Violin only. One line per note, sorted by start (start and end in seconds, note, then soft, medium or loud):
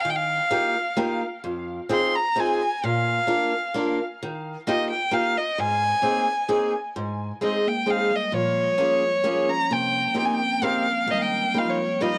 0.01 0.11 F5 medium
0.10 0.17 G5 medium
0.16 1.20 F5 medium
1.94 2.17 C6 medium
2.16 2.41 A#5 medium
2.40 2.87 G#5 medium
2.85 3.99 F5 medium
4.69 4.89 D#5 medium
4.90 5.15 G5 medium
5.13 5.39 F5 medium
5.38 5.61 D#5 medium
5.60 6.74 G#5 medium
7.44 7.70 D#5 medium
7.68 7.92 G5 medium
7.91 8.17 F5 medium
8.16 8.36 D#5 medium
8.37 9.51 C#5 medium
9.50 9.74 A#5 medium
9.73 10.18 G5 medium
10.19 10.27 G5 medium
10.26 10.36 G#5 medium
10.34 10.66 G5 medium
10.65 11.12 F5 medium
11.11 11.15 D#5 medium
11.11 11.19 F5 medium
11.18 11.23 D#5 medium
11.22 11.60 G5 medium
11.58 11.72 F5 medium
11.70 12.04 C#5 medium
12.02 12.18 D#5 medium